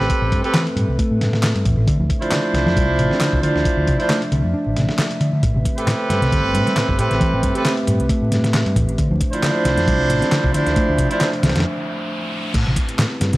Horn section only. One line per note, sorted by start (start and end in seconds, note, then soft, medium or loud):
0.00 0.41 C4 medium
0.00 0.41 G4 medium
0.00 0.41 A4 medium
0.00 0.41 B4 loud
0.44 0.63 C4 medium
0.44 0.63 G4 medium
0.44 0.63 A4 medium
0.44 0.63 B4 loud
2.21 3.40 D4 loud
2.21 3.41 E4 loud
2.21 3.40 F4 loud
2.21 3.41 C5 loud
3.42 3.97 D4 medium
3.42 3.97 E4 medium
3.42 3.97 F4 medium
3.42 3.96 C5 loud
4.00 4.18 D4 medium
4.00 4.18 E4 medium
4.00 4.18 F4 medium
4.00 4.18 C5 loud
5.78 6.96 C4 loud
5.78 6.96 G4 loud
5.78 6.96 A4 loud
5.78 6.96 B4 loud
6.99 7.52 C4 medium
6.99 7.52 G4 medium
6.99 7.52 A4 medium
6.99 7.52 B4 loud
7.55 7.74 C4 medium
7.55 7.74 G4 medium
7.55 7.74 A4 medium
7.55 7.74 B4 loud
9.33 10.52 D4 loud
9.33 10.52 E4 loud
9.33 10.52 F4 loud
9.33 10.52 C5 loud
10.54 11.08 D4 medium
10.54 11.08 E4 medium
10.54 11.08 F4 medium
10.54 11.08 C5 loud
11.11 11.29 D4 medium
11.11 11.29 E4 medium
11.11 11.29 F4 medium
11.11 11.30 C5 loud